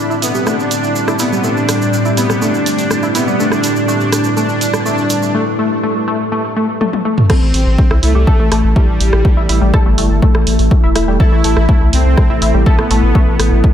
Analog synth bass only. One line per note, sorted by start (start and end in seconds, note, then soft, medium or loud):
7.42 7.52 A1 medium
7.54 7.64 A1 loud
7.66 7.76 A1 medium
7.91 8.01 C2 medium
8.03 8.13 C2 loud
8.15 8.25 C2 medium
8.40 8.50 A1 medium
8.52 8.62 A1 loud
8.64 8.74 A1 medium
8.88 8.98 A1 medium
9.00 9.11 A1 loud
9.13 9.23 A1 medium
9.37 9.47 A1 medium
9.49 9.59 A1 loud
9.62 9.72 A1 medium
9.86 9.96 G1 medium
9.98 10.08 G1 loud
10.10 10.20 G1 loud
10.35 10.45 A1 medium
10.47 10.57 A1 loud
10.59 10.69 A1 loud
10.83 10.94 E1 medium
10.95 11.06 E1 loud
11.08 11.18 E1 medium
11.32 11.42 A1 medium
11.44 11.55 A1 loud
11.57 11.67 A1 medium
11.81 11.91 C2 medium
11.93 12.03 C2 loud
12.05 12.15 C2 medium
12.30 12.40 A1 medium
12.42 12.52 A1 loud
12.54 12.64 A1 medium
12.78 12.89 A1 medium
12.90 13.01 A1 loud
13.03 13.13 A1 medium
13.27 13.37 A1 medium
13.39 13.50 A1 loud
13.52 13.62 A1 medium